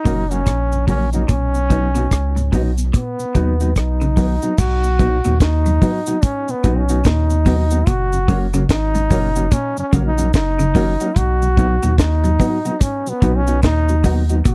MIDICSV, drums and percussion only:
0, 0, Header, 1, 2, 480
1, 0, Start_track
1, 0, Tempo, 823158
1, 752, Time_signature, 4, 2, 24, 8
1, 8483, End_track
2, 0, Start_track
2, 0, Title_t, "Drums"
2, 30, Note_on_c, 9, 46, 55
2, 32, Note_on_c, 9, 36, 97
2, 34, Note_on_c, 9, 69, 53
2, 88, Note_off_c, 9, 46, 0
2, 90, Note_off_c, 9, 36, 0
2, 92, Note_off_c, 9, 69, 0
2, 180, Note_on_c, 9, 42, 44
2, 181, Note_on_c, 9, 69, 80
2, 238, Note_off_c, 9, 42, 0
2, 240, Note_off_c, 9, 69, 0
2, 270, Note_on_c, 9, 69, 65
2, 272, Note_on_c, 9, 36, 99
2, 272, Note_on_c, 9, 42, 92
2, 279, Note_on_c, 9, 37, 92
2, 329, Note_off_c, 9, 69, 0
2, 330, Note_off_c, 9, 36, 0
2, 331, Note_off_c, 9, 42, 0
2, 337, Note_off_c, 9, 37, 0
2, 421, Note_on_c, 9, 69, 49
2, 479, Note_off_c, 9, 69, 0
2, 511, Note_on_c, 9, 46, 71
2, 512, Note_on_c, 9, 36, 95
2, 513, Note_on_c, 9, 69, 56
2, 569, Note_off_c, 9, 46, 0
2, 570, Note_off_c, 9, 36, 0
2, 571, Note_off_c, 9, 69, 0
2, 658, Note_on_c, 9, 42, 50
2, 658, Note_on_c, 9, 69, 67
2, 716, Note_off_c, 9, 42, 0
2, 716, Note_off_c, 9, 69, 0
2, 750, Note_on_c, 9, 69, 70
2, 752, Note_on_c, 9, 42, 85
2, 753, Note_on_c, 9, 36, 107
2, 809, Note_off_c, 9, 69, 0
2, 810, Note_off_c, 9, 42, 0
2, 811, Note_off_c, 9, 36, 0
2, 901, Note_on_c, 9, 69, 56
2, 959, Note_off_c, 9, 69, 0
2, 993, Note_on_c, 9, 36, 93
2, 993, Note_on_c, 9, 69, 50
2, 995, Note_on_c, 9, 42, 68
2, 1051, Note_off_c, 9, 36, 0
2, 1052, Note_off_c, 9, 69, 0
2, 1053, Note_off_c, 9, 42, 0
2, 1137, Note_on_c, 9, 69, 81
2, 1141, Note_on_c, 9, 42, 43
2, 1196, Note_off_c, 9, 69, 0
2, 1200, Note_off_c, 9, 42, 0
2, 1233, Note_on_c, 9, 36, 94
2, 1234, Note_on_c, 9, 42, 87
2, 1234, Note_on_c, 9, 69, 69
2, 1241, Note_on_c, 9, 37, 114
2, 1291, Note_off_c, 9, 36, 0
2, 1292, Note_off_c, 9, 69, 0
2, 1293, Note_off_c, 9, 42, 0
2, 1299, Note_off_c, 9, 37, 0
2, 1382, Note_on_c, 9, 42, 45
2, 1382, Note_on_c, 9, 69, 52
2, 1440, Note_off_c, 9, 42, 0
2, 1440, Note_off_c, 9, 69, 0
2, 1472, Note_on_c, 9, 46, 65
2, 1474, Note_on_c, 9, 36, 81
2, 1477, Note_on_c, 9, 69, 53
2, 1530, Note_off_c, 9, 46, 0
2, 1532, Note_off_c, 9, 36, 0
2, 1535, Note_off_c, 9, 69, 0
2, 1620, Note_on_c, 9, 69, 77
2, 1627, Note_on_c, 9, 42, 53
2, 1678, Note_off_c, 9, 69, 0
2, 1685, Note_off_c, 9, 42, 0
2, 1714, Note_on_c, 9, 69, 69
2, 1715, Note_on_c, 9, 36, 127
2, 1715, Note_on_c, 9, 42, 96
2, 1772, Note_off_c, 9, 69, 0
2, 1773, Note_off_c, 9, 36, 0
2, 1773, Note_off_c, 9, 42, 0
2, 1862, Note_on_c, 9, 69, 59
2, 1921, Note_off_c, 9, 69, 0
2, 1953, Note_on_c, 9, 69, 53
2, 1954, Note_on_c, 9, 36, 112
2, 1954, Note_on_c, 9, 42, 83
2, 2012, Note_off_c, 9, 36, 0
2, 2012, Note_off_c, 9, 42, 0
2, 2012, Note_off_c, 9, 69, 0
2, 2101, Note_on_c, 9, 69, 73
2, 2104, Note_on_c, 9, 42, 50
2, 2159, Note_off_c, 9, 69, 0
2, 2162, Note_off_c, 9, 42, 0
2, 2191, Note_on_c, 9, 69, 62
2, 2193, Note_on_c, 9, 36, 92
2, 2196, Note_on_c, 9, 42, 89
2, 2202, Note_on_c, 9, 37, 106
2, 2250, Note_off_c, 9, 69, 0
2, 2252, Note_off_c, 9, 36, 0
2, 2254, Note_off_c, 9, 42, 0
2, 2260, Note_off_c, 9, 37, 0
2, 2339, Note_on_c, 9, 69, 48
2, 2397, Note_off_c, 9, 69, 0
2, 2431, Note_on_c, 9, 69, 55
2, 2432, Note_on_c, 9, 36, 89
2, 2432, Note_on_c, 9, 46, 82
2, 2490, Note_off_c, 9, 36, 0
2, 2490, Note_off_c, 9, 46, 0
2, 2490, Note_off_c, 9, 69, 0
2, 2578, Note_on_c, 9, 69, 72
2, 2579, Note_on_c, 9, 42, 47
2, 2637, Note_off_c, 9, 42, 0
2, 2637, Note_off_c, 9, 69, 0
2, 2671, Note_on_c, 9, 69, 74
2, 2673, Note_on_c, 9, 36, 116
2, 2673, Note_on_c, 9, 49, 93
2, 2729, Note_off_c, 9, 69, 0
2, 2731, Note_off_c, 9, 36, 0
2, 2731, Note_off_c, 9, 49, 0
2, 2820, Note_on_c, 9, 69, 56
2, 2878, Note_off_c, 9, 69, 0
2, 2912, Note_on_c, 9, 36, 101
2, 2912, Note_on_c, 9, 69, 53
2, 2913, Note_on_c, 9, 42, 73
2, 2970, Note_off_c, 9, 36, 0
2, 2970, Note_off_c, 9, 69, 0
2, 2972, Note_off_c, 9, 42, 0
2, 3058, Note_on_c, 9, 69, 85
2, 3060, Note_on_c, 9, 42, 50
2, 3116, Note_off_c, 9, 69, 0
2, 3118, Note_off_c, 9, 42, 0
2, 3151, Note_on_c, 9, 36, 106
2, 3151, Note_on_c, 9, 69, 74
2, 3152, Note_on_c, 9, 42, 96
2, 3159, Note_on_c, 9, 38, 101
2, 3209, Note_off_c, 9, 36, 0
2, 3209, Note_off_c, 9, 69, 0
2, 3210, Note_off_c, 9, 42, 0
2, 3217, Note_off_c, 9, 38, 0
2, 3300, Note_on_c, 9, 69, 49
2, 3301, Note_on_c, 9, 42, 49
2, 3358, Note_off_c, 9, 69, 0
2, 3359, Note_off_c, 9, 42, 0
2, 3391, Note_on_c, 9, 46, 72
2, 3392, Note_on_c, 9, 36, 101
2, 3394, Note_on_c, 9, 69, 65
2, 3450, Note_off_c, 9, 36, 0
2, 3450, Note_off_c, 9, 46, 0
2, 3452, Note_off_c, 9, 69, 0
2, 3536, Note_on_c, 9, 69, 87
2, 3544, Note_on_c, 9, 42, 50
2, 3594, Note_off_c, 9, 69, 0
2, 3602, Note_off_c, 9, 42, 0
2, 3629, Note_on_c, 9, 69, 76
2, 3633, Note_on_c, 9, 36, 127
2, 3633, Note_on_c, 9, 42, 110
2, 3688, Note_off_c, 9, 69, 0
2, 3691, Note_off_c, 9, 36, 0
2, 3691, Note_off_c, 9, 42, 0
2, 3780, Note_on_c, 9, 69, 59
2, 3838, Note_off_c, 9, 69, 0
2, 3870, Note_on_c, 9, 69, 57
2, 3872, Note_on_c, 9, 36, 107
2, 3873, Note_on_c, 9, 42, 78
2, 3929, Note_off_c, 9, 69, 0
2, 3930, Note_off_c, 9, 36, 0
2, 3931, Note_off_c, 9, 42, 0
2, 4017, Note_on_c, 9, 69, 82
2, 4022, Note_on_c, 9, 42, 52
2, 4075, Note_off_c, 9, 69, 0
2, 4080, Note_off_c, 9, 42, 0
2, 4106, Note_on_c, 9, 69, 61
2, 4111, Note_on_c, 9, 36, 111
2, 4113, Note_on_c, 9, 42, 91
2, 4119, Note_on_c, 9, 38, 101
2, 4165, Note_off_c, 9, 69, 0
2, 4169, Note_off_c, 9, 36, 0
2, 4171, Note_off_c, 9, 42, 0
2, 4177, Note_off_c, 9, 38, 0
2, 4257, Note_on_c, 9, 69, 54
2, 4315, Note_off_c, 9, 69, 0
2, 4348, Note_on_c, 9, 69, 62
2, 4349, Note_on_c, 9, 36, 108
2, 4349, Note_on_c, 9, 46, 88
2, 4406, Note_off_c, 9, 69, 0
2, 4407, Note_off_c, 9, 46, 0
2, 4408, Note_off_c, 9, 36, 0
2, 4494, Note_on_c, 9, 69, 79
2, 4496, Note_on_c, 9, 42, 51
2, 4552, Note_off_c, 9, 69, 0
2, 4555, Note_off_c, 9, 42, 0
2, 4588, Note_on_c, 9, 69, 77
2, 4589, Note_on_c, 9, 42, 84
2, 4590, Note_on_c, 9, 36, 113
2, 4646, Note_off_c, 9, 69, 0
2, 4648, Note_off_c, 9, 42, 0
2, 4649, Note_off_c, 9, 36, 0
2, 4739, Note_on_c, 9, 69, 56
2, 4797, Note_off_c, 9, 69, 0
2, 4830, Note_on_c, 9, 36, 100
2, 4832, Note_on_c, 9, 46, 56
2, 4832, Note_on_c, 9, 69, 48
2, 4888, Note_off_c, 9, 36, 0
2, 4890, Note_off_c, 9, 46, 0
2, 4890, Note_off_c, 9, 69, 0
2, 4977, Note_on_c, 9, 42, 48
2, 4977, Note_on_c, 9, 69, 82
2, 5035, Note_off_c, 9, 42, 0
2, 5036, Note_off_c, 9, 69, 0
2, 5069, Note_on_c, 9, 36, 90
2, 5069, Note_on_c, 9, 42, 96
2, 5071, Note_on_c, 9, 69, 65
2, 5076, Note_on_c, 9, 38, 105
2, 5127, Note_off_c, 9, 36, 0
2, 5128, Note_off_c, 9, 42, 0
2, 5129, Note_off_c, 9, 69, 0
2, 5135, Note_off_c, 9, 38, 0
2, 5218, Note_on_c, 9, 42, 52
2, 5218, Note_on_c, 9, 69, 46
2, 5276, Note_off_c, 9, 42, 0
2, 5276, Note_off_c, 9, 69, 0
2, 5307, Note_on_c, 9, 46, 67
2, 5309, Note_on_c, 9, 36, 87
2, 5312, Note_on_c, 9, 69, 63
2, 5366, Note_off_c, 9, 46, 0
2, 5368, Note_off_c, 9, 36, 0
2, 5370, Note_off_c, 9, 69, 0
2, 5455, Note_on_c, 9, 69, 91
2, 5461, Note_on_c, 9, 42, 54
2, 5514, Note_off_c, 9, 69, 0
2, 5519, Note_off_c, 9, 42, 0
2, 5548, Note_on_c, 9, 69, 73
2, 5549, Note_on_c, 9, 42, 108
2, 5550, Note_on_c, 9, 36, 127
2, 5607, Note_off_c, 9, 42, 0
2, 5607, Note_off_c, 9, 69, 0
2, 5608, Note_off_c, 9, 36, 0
2, 5697, Note_on_c, 9, 69, 60
2, 5756, Note_off_c, 9, 69, 0
2, 5789, Note_on_c, 9, 36, 105
2, 5789, Note_on_c, 9, 42, 78
2, 5790, Note_on_c, 9, 69, 61
2, 5847, Note_off_c, 9, 42, 0
2, 5848, Note_off_c, 9, 36, 0
2, 5848, Note_off_c, 9, 69, 0
2, 5936, Note_on_c, 9, 69, 77
2, 5938, Note_on_c, 9, 42, 46
2, 5995, Note_off_c, 9, 69, 0
2, 5996, Note_off_c, 9, 42, 0
2, 6027, Note_on_c, 9, 69, 69
2, 6029, Note_on_c, 9, 36, 119
2, 6030, Note_on_c, 9, 42, 103
2, 6037, Note_on_c, 9, 38, 96
2, 6085, Note_off_c, 9, 69, 0
2, 6088, Note_off_c, 9, 36, 0
2, 6089, Note_off_c, 9, 42, 0
2, 6095, Note_off_c, 9, 38, 0
2, 6177, Note_on_c, 9, 69, 58
2, 6236, Note_off_c, 9, 69, 0
2, 6267, Note_on_c, 9, 46, 85
2, 6268, Note_on_c, 9, 36, 94
2, 6269, Note_on_c, 9, 69, 57
2, 6325, Note_off_c, 9, 46, 0
2, 6327, Note_off_c, 9, 36, 0
2, 6328, Note_off_c, 9, 69, 0
2, 6415, Note_on_c, 9, 42, 54
2, 6417, Note_on_c, 9, 69, 76
2, 6473, Note_off_c, 9, 42, 0
2, 6475, Note_off_c, 9, 69, 0
2, 6508, Note_on_c, 9, 42, 100
2, 6509, Note_on_c, 9, 36, 104
2, 6510, Note_on_c, 9, 69, 78
2, 6566, Note_off_c, 9, 42, 0
2, 6567, Note_off_c, 9, 36, 0
2, 6569, Note_off_c, 9, 69, 0
2, 6661, Note_on_c, 9, 69, 55
2, 6719, Note_off_c, 9, 69, 0
2, 6749, Note_on_c, 9, 36, 102
2, 6749, Note_on_c, 9, 42, 72
2, 6753, Note_on_c, 9, 69, 52
2, 6807, Note_off_c, 9, 36, 0
2, 6808, Note_off_c, 9, 42, 0
2, 6812, Note_off_c, 9, 69, 0
2, 6895, Note_on_c, 9, 42, 49
2, 6897, Note_on_c, 9, 69, 89
2, 6953, Note_off_c, 9, 42, 0
2, 6956, Note_off_c, 9, 69, 0
2, 6988, Note_on_c, 9, 36, 99
2, 6988, Note_on_c, 9, 42, 90
2, 6992, Note_on_c, 9, 69, 70
2, 6994, Note_on_c, 9, 38, 108
2, 7046, Note_off_c, 9, 36, 0
2, 7046, Note_off_c, 9, 42, 0
2, 7050, Note_off_c, 9, 69, 0
2, 7053, Note_off_c, 9, 38, 0
2, 7136, Note_on_c, 9, 42, 47
2, 7140, Note_on_c, 9, 69, 53
2, 7194, Note_off_c, 9, 42, 0
2, 7198, Note_off_c, 9, 69, 0
2, 7226, Note_on_c, 9, 46, 66
2, 7229, Note_on_c, 9, 36, 97
2, 7234, Note_on_c, 9, 69, 58
2, 7284, Note_off_c, 9, 46, 0
2, 7287, Note_off_c, 9, 36, 0
2, 7293, Note_off_c, 9, 69, 0
2, 7378, Note_on_c, 9, 69, 86
2, 7379, Note_on_c, 9, 42, 53
2, 7436, Note_off_c, 9, 69, 0
2, 7438, Note_off_c, 9, 42, 0
2, 7469, Note_on_c, 9, 42, 113
2, 7470, Note_on_c, 9, 36, 127
2, 7470, Note_on_c, 9, 69, 79
2, 7527, Note_off_c, 9, 42, 0
2, 7528, Note_off_c, 9, 36, 0
2, 7529, Note_off_c, 9, 69, 0
2, 7619, Note_on_c, 9, 69, 62
2, 7678, Note_off_c, 9, 69, 0
2, 7709, Note_on_c, 9, 36, 105
2, 7709, Note_on_c, 9, 42, 83
2, 7709, Note_on_c, 9, 69, 51
2, 7767, Note_off_c, 9, 42, 0
2, 7768, Note_off_c, 9, 36, 0
2, 7768, Note_off_c, 9, 69, 0
2, 7856, Note_on_c, 9, 69, 77
2, 7859, Note_on_c, 9, 42, 55
2, 7914, Note_off_c, 9, 69, 0
2, 7917, Note_off_c, 9, 42, 0
2, 7946, Note_on_c, 9, 69, 71
2, 7949, Note_on_c, 9, 36, 98
2, 7949, Note_on_c, 9, 42, 86
2, 7956, Note_on_c, 9, 38, 101
2, 8004, Note_off_c, 9, 69, 0
2, 8007, Note_off_c, 9, 36, 0
2, 8008, Note_off_c, 9, 42, 0
2, 8014, Note_off_c, 9, 38, 0
2, 8097, Note_on_c, 9, 69, 53
2, 8155, Note_off_c, 9, 69, 0
2, 8186, Note_on_c, 9, 46, 88
2, 8187, Note_on_c, 9, 69, 64
2, 8188, Note_on_c, 9, 36, 100
2, 8244, Note_off_c, 9, 46, 0
2, 8245, Note_off_c, 9, 69, 0
2, 8246, Note_off_c, 9, 36, 0
2, 8335, Note_on_c, 9, 42, 53
2, 8335, Note_on_c, 9, 69, 74
2, 8393, Note_off_c, 9, 42, 0
2, 8393, Note_off_c, 9, 69, 0
2, 8427, Note_on_c, 9, 69, 77
2, 8428, Note_on_c, 9, 42, 87
2, 8429, Note_on_c, 9, 36, 115
2, 8483, Note_off_c, 9, 36, 0
2, 8483, Note_off_c, 9, 42, 0
2, 8483, Note_off_c, 9, 69, 0
2, 8483, End_track
0, 0, End_of_file